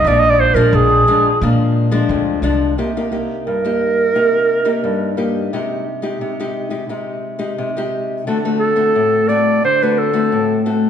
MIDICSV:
0, 0, Header, 1, 4, 480
1, 0, Start_track
1, 0, Key_signature, -3, "minor"
1, 0, Tempo, 684151
1, 41, Time_signature, 4, 2, 24, 8
1, 7646, End_track
2, 0, Start_track
2, 0, Title_t, "Clarinet"
2, 0, Program_c, 0, 71
2, 53, Note_on_c, 0, 74, 87
2, 134, Note_on_c, 0, 75, 100
2, 144, Note_off_c, 0, 74, 0
2, 208, Note_on_c, 0, 74, 89
2, 218, Note_off_c, 0, 75, 0
2, 282, Note_on_c, 0, 72, 88
2, 292, Note_off_c, 0, 74, 0
2, 384, Note_on_c, 0, 70, 82
2, 395, Note_off_c, 0, 72, 0
2, 527, Note_on_c, 0, 68, 88
2, 537, Note_off_c, 0, 70, 0
2, 1001, Note_off_c, 0, 68, 0
2, 2431, Note_on_c, 0, 70, 80
2, 3605, Note_off_c, 0, 70, 0
2, 6028, Note_on_c, 0, 69, 78
2, 6513, Note_on_c, 0, 74, 81
2, 6524, Note_off_c, 0, 69, 0
2, 6757, Note_off_c, 0, 74, 0
2, 6767, Note_on_c, 0, 72, 83
2, 6896, Note_on_c, 0, 71, 73
2, 6907, Note_off_c, 0, 72, 0
2, 7004, Note_on_c, 0, 69, 69
2, 7014, Note_off_c, 0, 71, 0
2, 7482, Note_off_c, 0, 69, 0
2, 7646, End_track
3, 0, Start_track
3, 0, Title_t, "Nylon-string guitar"
3, 0, Program_c, 1, 24
3, 44, Note_on_c, 1, 46, 65
3, 47, Note_on_c, 1, 53, 65
3, 50, Note_on_c, 1, 56, 59
3, 52, Note_on_c, 1, 62, 64
3, 364, Note_off_c, 1, 53, 0
3, 366, Note_off_c, 1, 56, 0
3, 366, Note_off_c, 1, 62, 0
3, 391, Note_on_c, 1, 53, 68
3, 396, Note_on_c, 1, 56, 69
3, 397, Note_on_c, 1, 62, 65
3, 497, Note_off_c, 1, 46, 0
3, 522, Note_on_c, 1, 41, 62
3, 716, Note_off_c, 1, 53, 0
3, 717, Note_off_c, 1, 56, 0
3, 719, Note_off_c, 1, 62, 0
3, 755, Note_on_c, 1, 53, 61
3, 759, Note_on_c, 1, 56, 68
3, 762, Note_on_c, 1, 62, 61
3, 897, Note_off_c, 1, 53, 0
3, 900, Note_off_c, 1, 56, 0
3, 901, Note_off_c, 1, 62, 0
3, 975, Note_off_c, 1, 41, 0
3, 999, Note_on_c, 1, 53, 55
3, 1000, Note_on_c, 1, 46, 58
3, 1003, Note_on_c, 1, 56, 53
3, 1005, Note_on_c, 1, 62, 59
3, 1318, Note_off_c, 1, 53, 0
3, 1321, Note_off_c, 1, 56, 0
3, 1322, Note_off_c, 1, 62, 0
3, 1343, Note_on_c, 1, 53, 63
3, 1347, Note_on_c, 1, 56, 72
3, 1349, Note_on_c, 1, 62, 68
3, 1454, Note_off_c, 1, 46, 0
3, 1477, Note_on_c, 1, 41, 64
3, 1671, Note_off_c, 1, 53, 0
3, 1671, Note_off_c, 1, 56, 0
3, 1673, Note_off_c, 1, 62, 0
3, 1704, Note_on_c, 1, 53, 62
3, 1707, Note_on_c, 1, 56, 62
3, 1711, Note_on_c, 1, 62, 73
3, 1911, Note_off_c, 1, 53, 0
3, 1912, Note_off_c, 1, 56, 0
3, 1915, Note_off_c, 1, 62, 0
3, 1932, Note_off_c, 1, 41, 0
3, 1951, Note_on_c, 1, 48, 58
3, 1954, Note_on_c, 1, 58, 47
3, 1956, Note_on_c, 1, 63, 45
3, 1957, Note_on_c, 1, 67, 53
3, 2036, Note_off_c, 1, 58, 0
3, 2036, Note_off_c, 1, 63, 0
3, 2037, Note_off_c, 1, 67, 0
3, 2083, Note_on_c, 1, 58, 49
3, 2084, Note_on_c, 1, 63, 46
3, 2086, Note_on_c, 1, 67, 53
3, 2161, Note_off_c, 1, 58, 0
3, 2161, Note_off_c, 1, 63, 0
3, 2162, Note_off_c, 1, 67, 0
3, 2186, Note_on_c, 1, 58, 39
3, 2190, Note_on_c, 1, 63, 45
3, 2193, Note_on_c, 1, 67, 43
3, 2409, Note_off_c, 1, 48, 0
3, 2434, Note_on_c, 1, 43, 54
3, 2512, Note_off_c, 1, 58, 0
3, 2513, Note_off_c, 1, 63, 0
3, 2516, Note_off_c, 1, 67, 0
3, 2557, Note_on_c, 1, 58, 48
3, 2561, Note_on_c, 1, 63, 49
3, 2565, Note_on_c, 1, 67, 52
3, 2878, Note_off_c, 1, 58, 0
3, 2880, Note_off_c, 1, 63, 0
3, 2880, Note_off_c, 1, 67, 0
3, 2890, Note_off_c, 1, 43, 0
3, 2913, Note_on_c, 1, 48, 49
3, 2915, Note_on_c, 1, 58, 38
3, 2916, Note_on_c, 1, 63, 40
3, 2920, Note_on_c, 1, 67, 47
3, 3236, Note_off_c, 1, 58, 0
3, 3237, Note_off_c, 1, 63, 0
3, 3238, Note_off_c, 1, 67, 0
3, 3261, Note_on_c, 1, 58, 53
3, 3264, Note_on_c, 1, 63, 55
3, 3267, Note_on_c, 1, 67, 53
3, 3370, Note_off_c, 1, 48, 0
3, 3394, Note_on_c, 1, 43, 54
3, 3590, Note_off_c, 1, 58, 0
3, 3591, Note_off_c, 1, 63, 0
3, 3592, Note_off_c, 1, 67, 0
3, 3629, Note_on_c, 1, 58, 47
3, 3632, Note_on_c, 1, 63, 43
3, 3633, Note_on_c, 1, 67, 51
3, 3851, Note_off_c, 1, 43, 0
3, 3853, Note_off_c, 1, 58, 0
3, 3854, Note_off_c, 1, 63, 0
3, 3855, Note_off_c, 1, 67, 0
3, 3880, Note_on_c, 1, 48, 56
3, 3882, Note_on_c, 1, 56, 43
3, 3885, Note_on_c, 1, 63, 47
3, 3888, Note_on_c, 1, 67, 44
3, 4103, Note_off_c, 1, 56, 0
3, 4105, Note_off_c, 1, 63, 0
3, 4107, Note_off_c, 1, 67, 0
3, 4225, Note_on_c, 1, 56, 50
3, 4230, Note_on_c, 1, 63, 45
3, 4233, Note_on_c, 1, 67, 57
3, 4335, Note_off_c, 1, 48, 0
3, 4358, Note_on_c, 1, 48, 54
3, 4433, Note_off_c, 1, 56, 0
3, 4434, Note_off_c, 1, 63, 0
3, 4436, Note_off_c, 1, 67, 0
3, 4488, Note_on_c, 1, 56, 53
3, 4492, Note_on_c, 1, 63, 47
3, 4494, Note_on_c, 1, 67, 59
3, 4684, Note_off_c, 1, 56, 0
3, 4686, Note_off_c, 1, 63, 0
3, 4686, Note_off_c, 1, 67, 0
3, 4703, Note_on_c, 1, 56, 45
3, 4707, Note_on_c, 1, 63, 50
3, 4708, Note_on_c, 1, 67, 47
3, 4792, Note_off_c, 1, 56, 0
3, 4793, Note_off_c, 1, 63, 0
3, 4794, Note_off_c, 1, 67, 0
3, 4814, Note_off_c, 1, 48, 0
3, 4836, Note_on_c, 1, 48, 46
3, 4837, Note_on_c, 1, 56, 38
3, 4839, Note_on_c, 1, 63, 41
3, 4842, Note_on_c, 1, 67, 45
3, 5158, Note_off_c, 1, 56, 0
3, 5160, Note_off_c, 1, 63, 0
3, 5161, Note_off_c, 1, 67, 0
3, 5183, Note_on_c, 1, 56, 51
3, 5187, Note_on_c, 1, 63, 53
3, 5187, Note_on_c, 1, 67, 51
3, 5293, Note_off_c, 1, 48, 0
3, 5321, Note_on_c, 1, 48, 61
3, 5392, Note_off_c, 1, 56, 0
3, 5393, Note_off_c, 1, 63, 0
3, 5394, Note_off_c, 1, 67, 0
3, 5448, Note_on_c, 1, 56, 52
3, 5451, Note_on_c, 1, 63, 50
3, 5457, Note_on_c, 1, 67, 62
3, 5765, Note_off_c, 1, 56, 0
3, 5766, Note_off_c, 1, 63, 0
3, 5770, Note_off_c, 1, 67, 0
3, 5776, Note_off_c, 1, 48, 0
3, 5802, Note_on_c, 1, 50, 62
3, 5804, Note_on_c, 1, 57, 51
3, 5806, Note_on_c, 1, 60, 48
3, 5809, Note_on_c, 1, 66, 53
3, 5872, Note_off_c, 1, 57, 0
3, 5875, Note_off_c, 1, 60, 0
3, 5876, Note_off_c, 1, 66, 0
3, 5928, Note_on_c, 1, 57, 52
3, 5931, Note_on_c, 1, 60, 50
3, 5933, Note_on_c, 1, 66, 51
3, 6125, Note_off_c, 1, 57, 0
3, 6127, Note_off_c, 1, 60, 0
3, 6127, Note_off_c, 1, 66, 0
3, 6144, Note_on_c, 1, 57, 46
3, 6149, Note_on_c, 1, 60, 51
3, 6150, Note_on_c, 1, 66, 53
3, 6257, Note_off_c, 1, 50, 0
3, 6282, Note_on_c, 1, 45, 60
3, 6474, Note_off_c, 1, 57, 0
3, 6475, Note_off_c, 1, 60, 0
3, 6476, Note_off_c, 1, 66, 0
3, 6516, Note_on_c, 1, 57, 44
3, 6521, Note_on_c, 1, 60, 47
3, 6524, Note_on_c, 1, 66, 53
3, 6737, Note_off_c, 1, 45, 0
3, 6744, Note_off_c, 1, 57, 0
3, 6745, Note_off_c, 1, 60, 0
3, 6747, Note_off_c, 1, 66, 0
3, 6764, Note_on_c, 1, 50, 53
3, 6892, Note_on_c, 1, 57, 47
3, 6897, Note_on_c, 1, 60, 45
3, 6899, Note_on_c, 1, 66, 58
3, 7088, Note_off_c, 1, 57, 0
3, 7090, Note_off_c, 1, 60, 0
3, 7091, Note_off_c, 1, 66, 0
3, 7110, Note_on_c, 1, 57, 51
3, 7113, Note_on_c, 1, 60, 50
3, 7114, Note_on_c, 1, 66, 52
3, 7218, Note_off_c, 1, 50, 0
3, 7241, Note_on_c, 1, 45, 57
3, 7437, Note_off_c, 1, 57, 0
3, 7438, Note_off_c, 1, 60, 0
3, 7439, Note_off_c, 1, 66, 0
3, 7478, Note_on_c, 1, 57, 47
3, 7480, Note_on_c, 1, 60, 46
3, 7482, Note_on_c, 1, 66, 53
3, 7634, Note_off_c, 1, 57, 0
3, 7634, Note_off_c, 1, 60, 0
3, 7636, Note_off_c, 1, 66, 0
3, 7646, Note_off_c, 1, 45, 0
3, 7646, End_track
4, 0, Start_track
4, 0, Title_t, "Upright bass"
4, 0, Program_c, 2, 32
4, 31, Note_on_c, 2, 34, 94
4, 340, Note_off_c, 2, 34, 0
4, 379, Note_on_c, 2, 46, 89
4, 490, Note_off_c, 2, 46, 0
4, 510, Note_on_c, 2, 34, 97
4, 717, Note_off_c, 2, 34, 0
4, 993, Note_on_c, 2, 46, 102
4, 1402, Note_off_c, 2, 46, 0
4, 1467, Note_on_c, 2, 38, 86
4, 1686, Note_off_c, 2, 38, 0
4, 1698, Note_on_c, 2, 36, 81
4, 1922, Note_off_c, 2, 36, 0
4, 7646, End_track
0, 0, End_of_file